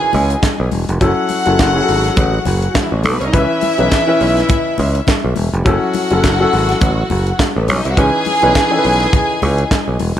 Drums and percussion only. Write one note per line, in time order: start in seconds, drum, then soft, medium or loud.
0.13 open hi-hat medium
0.13 muted conga soft
0.13 low conga medium
0.30 closed hi-hat medium
0.42 kick loud
0.42 snare loud
0.42 clap medium
0.42 closed hi-hat medium
0.42 high conga medium
0.71 open hi-hat medium
0.71 high conga medium
0.89 closed hi-hat soft
1.01 kick medium
1.01 closed hi-hat medium
1.29 open hi-hat medium
1.29 muted conga medium
1.46 closed hi-hat soft
1.59 kick loud
1.59 snare loud
1.59 clap medium
1.59 closed hi-hat medium
1.59 high conga medium
1.88 open hi-hat medium
2.04 snare soft
2.04 closed hi-hat soft
2.17 kick loud
2.17 closed hi-hat medium
2.17 muted conga soft
2.17 low conga medium
2.45 open hi-hat medium
2.45 muted conga soft
2.45 low conga medium
2.62 closed hi-hat soft
2.74 kick loud
2.74 snare loud
2.74 clap medium
2.74 closed hi-hat medium
2.74 high conga medium
3.03 open hi-hat medium
3.03 high conga medium
3.20 closed hi-hat soft
3.20 high conga medium
3.33 kick loud
3.33 closed hi-hat medium
3.61 open hi-hat medium
3.61 muted conga medium
3.78 closed hi-hat soft
3.91 kick loud
3.91 snare loud
3.91 clap medium
3.91 closed hi-hat medium
3.91 high conga medium
4.21 open hi-hat medium
4.37 snare soft
4.37 closed hi-hat soft
4.49 kick loud
4.49 closed hi-hat medium
4.49 muted conga soft
4.49 low conga medium
4.78 open hi-hat medium
4.78 muted conga soft
4.78 low conga medium
4.95 closed hi-hat soft
5.07 kick loud
5.07 snare loud
5.07 clap medium
5.07 closed hi-hat medium
5.07 high conga medium
5.36 open hi-hat medium
5.36 high conga medium
5.54 closed hi-hat soft
5.66 kick loud
5.66 closed hi-hat medium
5.93 open hi-hat medium
5.93 muted conga medium
6.11 closed hi-hat soft
6.24 kick loud
6.24 snare loud
6.24 clap medium
6.24 closed hi-hat medium
6.24 high conga medium
6.53 open hi-hat medium
6.69 snare soft
6.69 closed hi-hat soft
6.81 kick loud
6.81 closed hi-hat medium
6.81 muted conga soft
6.81 low conga medium
7.10 open hi-hat medium
7.10 muted conga soft
7.10 low conga medium
7.27 closed hi-hat soft
7.39 kick loud
7.39 snare loud
7.39 clap medium
7.39 closed hi-hat medium
7.39 high conga medium
7.68 open hi-hat medium
7.68 high conga medium
7.85 closed hi-hat soft
7.97 kick loud
7.97 closed hi-hat medium
8.25 open hi-hat medium
8.25 muted conga medium
8.42 closed hi-hat soft
8.55 kick loud
8.55 snare loud
8.55 clap medium
8.55 closed hi-hat medium
8.55 high conga medium
8.84 open hi-hat medium
9.00 snare soft
9.00 closed hi-hat soft
9.13 kick loud
9.13 closed hi-hat medium
9.13 muted conga soft
9.13 low conga medium
9.42 open hi-hat medium
9.42 muted conga soft
9.42 low conga medium
9.58 closed hi-hat medium
9.71 kick loud
9.71 snare loud
9.71 clap medium
9.71 closed hi-hat medium
9.71 high conga medium
9.99 open hi-hat medium
9.99 high conga medium